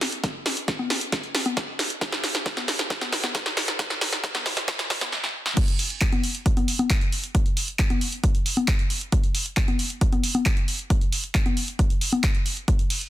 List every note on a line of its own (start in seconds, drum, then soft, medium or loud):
0.01 snare medium
0.01 open hi-hat medium
0.12 closed hi-hat soft
0.24 kick loud
0.24 snare medium
0.24 closed hi-hat medium
0.46 snare medium
0.46 open hi-hat loud
0.57 closed hi-hat soft
0.68 kick loud
0.68 snare medium
0.68 closed hi-hat medium
0.79 high conga medium
0.90 snare medium
0.90 open hi-hat medium
1.01 closed hi-hat medium
1.12 kick loud
1.12 snare medium
1.12 closed hi-hat medium
1.24 closed hi-hat soft
1.35 snare medium
1.35 open hi-hat loud
1.46 closed hi-hat medium
1.46 high conga medium
1.57 kick loud
1.57 snare medium
1.57 closed hi-hat medium
1.79 snare medium
1.79 open hi-hat medium
1.90 closed hi-hat medium
2.01 kick loud
2.01 snare medium
2.01 closed hi-hat medium
2.12 snare medium
2.24 snare medium
2.24 open hi-hat loud
2.35 snare medium
2.35 closed hi-hat medium
2.46 kick loud
2.46 snare medium
2.46 closed hi-hat medium
2.57 snare medium
2.57 high conga medium
2.68 snare loud
2.68 open hi-hat medium
2.79 snare medium
2.79 closed hi-hat medium
2.90 kick loud
2.90 snare medium
2.90 closed hi-hat medium
3.01 snare medium
3.01 closed hi-hat soft
3.01 high conga medium
3.12 snare loud
3.12 open hi-hat loud
3.24 snare medium
3.24 closed hi-hat medium
3.24 high conga medium
3.35 kick loud
3.35 snare loud
3.35 closed hi-hat medium
3.46 snare medium
3.57 snare loud
3.57 open hi-hat medium
3.68 snare medium
3.68 closed hi-hat medium
3.79 kick loud
3.79 snare loud
3.79 closed hi-hat medium
3.90 snare medium
3.90 closed hi-hat soft
4.01 snare loud
4.01 open hi-hat loud
4.13 snare medium
4.13 closed hi-hat medium
4.24 kick loud
4.24 snare loud
4.24 closed hi-hat medium
4.35 snare medium
4.35 high conga medium
4.46 snare loud
4.46 open hi-hat medium
4.57 snare loud
4.57 closed hi-hat medium
4.68 kick loud
4.68 snare loud
4.68 closed hi-hat medium
4.79 snare loud
4.79 closed hi-hat soft
4.90 kick medium
4.90 snare loud
4.90 open hi-hat loud
5.01 snare loud
5.01 closed hi-hat medium
5.01 high conga medium
5.12 snare medium
5.24 snare medium
5.46 snare medium
5.57 kick loud
5.57 closed hi-hat loud
5.57 crash loud
5.68 closed hi-hat soft
5.79 open hi-hat loud
5.90 closed hi-hat soft
6.01 kick loud
6.01 clap loud
6.01 closed hi-hat loud
6.12 closed hi-hat soft
6.12 high conga medium
6.24 open hi-hat medium
6.35 closed hi-hat soft
6.46 kick loud
6.46 closed hi-hat loud
6.57 closed hi-hat soft
6.57 high conga medium
6.68 open hi-hat loud
6.79 closed hi-hat soft
6.79 high conga medium
6.90 kick loud
6.90 clap loud
6.90 closed hi-hat loud
7.01 closed hi-hat soft
7.12 open hi-hat medium
7.24 closed hi-hat soft
7.35 kick loud
7.35 closed hi-hat medium
7.46 closed hi-hat soft
7.57 open hi-hat loud
7.68 closed hi-hat soft
7.79 kick loud
7.79 clap loud
7.79 closed hi-hat medium
7.90 closed hi-hat soft
7.90 high conga medium
8.01 open hi-hat loud
8.12 closed hi-hat soft
8.24 kick loud
8.24 closed hi-hat loud
8.35 closed hi-hat soft
8.46 open hi-hat loud
8.57 closed hi-hat soft
8.57 high conga medium
8.68 kick loud
8.68 clap loud
8.68 closed hi-hat medium
8.79 closed hi-hat soft
8.90 open hi-hat loud
9.01 closed hi-hat soft
9.12 kick loud
9.12 closed hi-hat medium
9.24 closed hi-hat soft
9.35 open hi-hat loud
9.46 closed hi-hat soft
9.57 kick loud
9.57 clap loud
9.57 closed hi-hat medium
9.68 closed hi-hat soft
9.68 high conga medium
9.79 open hi-hat loud
9.90 closed hi-hat soft
10.01 kick loud
10.01 closed hi-hat medium
10.12 closed hi-hat soft
10.12 high conga medium
10.24 open hi-hat loud
10.35 closed hi-hat soft
10.35 high conga medium
10.46 kick loud
10.46 clap loud
10.46 closed hi-hat medium
10.57 closed hi-hat soft
10.68 open hi-hat loud
10.79 closed hi-hat soft
10.90 kick loud
10.90 closed hi-hat medium
11.01 closed hi-hat soft
11.12 open hi-hat loud
11.24 closed hi-hat soft
11.35 kick loud
11.35 clap loud
11.35 closed hi-hat medium
11.46 closed hi-hat soft
11.46 high conga medium
11.57 open hi-hat loud
11.68 closed hi-hat soft
11.79 kick loud
11.79 closed hi-hat medium
11.90 closed hi-hat soft
12.01 open hi-hat loud
12.12 high conga medium
12.24 kick loud
12.24 clap loud
12.24 closed hi-hat medium
12.35 closed hi-hat soft
12.46 open hi-hat loud
12.57 closed hi-hat soft
12.68 kick loud
12.68 closed hi-hat medium
12.79 closed hi-hat soft
12.90 open hi-hat loud
12.90 ride medium
13.01 closed hi-hat soft